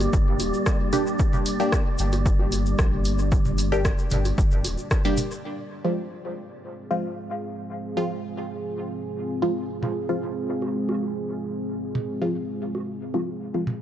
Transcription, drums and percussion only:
0.00 open hi-hat soft
0.00 high conga medium
0.00 shaker soft
0.13 kick loud
0.13 shaker medium
0.40 open hi-hat medium
0.40 high conga medium
0.40 shaker medium
0.54 shaker soft
0.66 kick loud
0.66 cross-stick medium
0.66 shaker soft
0.93 mid tom medium
0.93 open hi-hat medium
0.93 shaker medium
1.07 shaker soft
1.19 kick loud
1.19 shaker medium
1.33 mid tom medium
1.33 shaker soft
1.46 open hi-hat medium
1.46 shaker medium
1.60 shaker soft
1.72 kick loud
1.72 cross-stick medium
1.72 shaker medium
1.98 open hi-hat medium
1.98 shaker medium
2.13 open hi-hat soft
2.13 high conga medium
2.13 shaker soft
2.26 kick loud
2.26 shaker medium
2.39 high conga medium
2.52 open hi-hat medium
2.52 shaker medium
2.66 shaker soft
2.79 kick loud
2.79 cross-stick medium
2.79 shaker medium
3.05 open hi-hat medium
3.05 shaker medium
3.19 shaker soft
3.32 kick loud
3.32 shaker medium
3.45 mid tom medium
3.45 shaker soft
3.58 open hi-hat medium
3.58 shaker loud
3.73 shaker soft
3.85 kick loud
3.85 cross-stick medium
3.85 shaker medium
3.99 shaker soft
4.10 mid tom medium
4.10 open hi-hat medium
4.10 shaker medium
4.25 open hi-hat soft
4.25 high conga medium
4.25 shaker soft
4.38 kick loud
4.38 shaker medium
4.51 shaker soft
4.64 open hi-hat medium
4.64 high conga medium
4.64 shaker medium
4.78 shaker soft
4.91 kick loud
4.91 cross-stick medium
4.91 shaker medium
5.05 shaker soft
5.17 mid tom medium
5.17 open hi-hat medium
5.17 shaker loud
5.31 shaker soft
9.83 mid tom medium
10.62 high conga medium
10.89 high conga medium
11.95 mid tom medium
12.75 high conga medium
13.14 high conga medium
13.67 mid tom medium

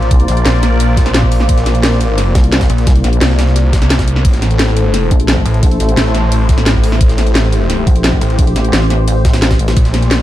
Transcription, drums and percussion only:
0.02 ride soft
0.11 kick loud
0.11 closed hi-hat medium
0.11 ride medium
0.20 closed hi-hat soft
0.28 snare medium
0.28 closed hi-hat medium
0.28 ride medium
0.37 closed hi-hat soft
0.46 snare loud
0.46 closed hi-hat medium
0.46 ride medium
0.54 snare soft
0.63 snare soft
0.63 closed hi-hat medium
0.63 ride medium
0.80 closed hi-hat medium
0.80 ride medium
0.97 kick loud
0.97 snare medium
0.97 closed hi-hat medium
0.97 ride medium
1.06 snare soft
1.06 closed hi-hat soft
1.14 snare loud
1.14 closed hi-hat loud
1.14 ride medium
1.23 kick medium
1.32 closed hi-hat medium
1.32 open hi-hat medium
1.40 snare soft
1.49 kick loud
1.49 closed hi-hat medium
1.49 ride medium
1.58 snare soft
1.58 closed hi-hat soft
1.66 snare medium
1.66 snare soft
1.66 closed hi-hat medium
1.66 ride medium
1.75 closed hi-hat soft
1.83 snare loud
1.83 closed hi-hat loud
1.83 ride medium
1.92 snare soft
2.01 closed hi-hat medium
2.01 ride medium
2.18 snare soft
2.18 closed hi-hat medium
2.18 ride medium
2.35 kick loud
2.35 snare loud
2.35 closed hi-hat medium
2.35 ride medium
2.44 closed hi-hat soft
2.52 snare loud
2.52 closed hi-hat loud
2.52 ride medium
2.61 kick medium
2.61 snare loud
2.61 ride medium
2.70 closed hi-hat medium
2.78 ride medium
2.87 kick loud
2.87 snare loud
2.87 closed hi-hat medium
2.87 ride medium
2.96 closed hi-hat soft
3.04 snare soft
3.04 closed hi-hat medium
3.04 ride medium
3.13 closed hi-hat soft
3.21 snare loud
3.21 closed hi-hat loud
3.21 ride medium
3.30 snare soft
3.39 snare loud
3.39 snare soft
3.39 closed hi-hat medium
3.39 ride medium
3.47 snare soft
3.56 snare soft
3.56 closed hi-hat loud
3.56 ride medium
3.73 kick loud
3.73 snare loud
3.73 closed hi-hat medium
3.73 ride medium
3.82 snare soft
3.82 closed hi-hat soft
3.90 snare loud
3.90 closed hi-hat loud
3.90 ride medium
3.99 kick medium
3.99 snare loud
3.99 closed hi-hat soft
3.99 ride medium
4.08 closed hi-hat medium
4.16 snare soft
4.25 kick loud
4.25 closed hi-hat loud
4.25 ride medium
4.33 snare soft
4.33 closed hi-hat soft
4.42 snare medium
4.42 snare soft
4.42 closed hi-hat medium
4.42 ride medium
4.51 closed hi-hat soft
4.59 snare loud
4.59 closed hi-hat medium
4.59 ride medium
4.68 snare soft
4.77 closed hi-hat medium
4.77 ride medium
4.94 snare soft
4.94 closed hi-hat loud
4.94 ride medium
5.11 kick loud
5.11 closed hi-hat medium
5.20 closed hi-hat soft
5.28 snare loud
5.28 closed hi-hat loud
5.28 ride medium
5.37 kick medium
5.46 closed hi-hat medium
5.46 ride medium
5.54 ride soft
5.63 kick loud
5.63 closed hi-hat medium
5.63 ride medium
5.71 closed hi-hat soft
5.80 snare medium
5.80 closed hi-hat medium
5.80 ride medium
5.89 closed hi-hat soft
5.97 snare loud
5.97 closed hi-hat medium
5.97 ride medium
6.06 snare soft
6.15 snare soft
6.15 closed hi-hat medium
6.15 ride medium
6.32 closed hi-hat medium
6.32 ride medium
6.49 kick loud
6.49 snare medium
6.49 closed hi-hat medium
6.49 ride medium
6.58 snare medium
6.58 snare soft
6.58 closed hi-hat soft
6.66 snare loud
6.66 closed hi-hat loud
6.66 ride medium
6.75 kick medium
6.84 closed hi-hat medium
6.84 open hi-hat medium
6.92 snare soft
7.01 kick loud
7.01 closed hi-hat medium
7.01 ride medium
7.09 snare soft
7.09 closed hi-hat soft
7.18 snare medium
7.18 snare soft
7.18 closed hi-hat medium
7.18 ride medium
7.27 closed hi-hat soft
7.35 snare loud
7.35 closed hi-hat medium
7.35 ride medium
7.44 snare soft
7.52 closed hi-hat medium
7.52 ride medium
7.70 snare soft
7.70 closed hi-hat medium
7.70 ride medium
7.87 kick loud
7.87 closed hi-hat medium
7.87 ride medium
7.96 closed hi-hat soft
8.04 snare loud
8.04 closed hi-hat medium
8.04 ride medium
8.13 kick medium
8.21 closed hi-hat medium
8.21 ride medium
8.30 ride soft
8.39 kick loud
8.39 closed hi-hat medium
8.39 ride medium
8.47 closed hi-hat soft
8.56 snare medium
8.56 snare soft
8.56 closed hi-hat medium
8.56 ride medium
8.65 closed hi-hat soft
8.73 snare loud
8.73 closed hi-hat medium
8.73 ride medium
8.82 snare soft
8.90 snare soft
8.90 closed hi-hat medium
8.90 ride medium
9.08 closed hi-hat medium
9.08 ride medium
9.25 kick loud
9.25 snare loud
9.25 closed hi-hat medium
9.25 ride medium
9.33 snare loud
9.33 snare soft
9.33 closed hi-hat soft
9.33 ride medium
9.42 snare loud
9.42 closed hi-hat medium
9.42 ride medium
9.51 kick medium
9.51 snare loud
9.51 ride medium
9.59 closed hi-hat medium
9.59 ride medium
9.68 snare loud
9.68 snare soft
9.68 ride medium
9.77 kick loud
9.77 closed hi-hat medium
9.77 ride medium
9.85 snare soft
9.85 closed hi-hat soft
9.94 snare medium
9.94 snare soft
9.94 closed hi-hat medium
9.94 ride medium
10.02 closed hi-hat soft
10.11 snare loud
10.11 closed hi-hat medium
10.11 ride medium

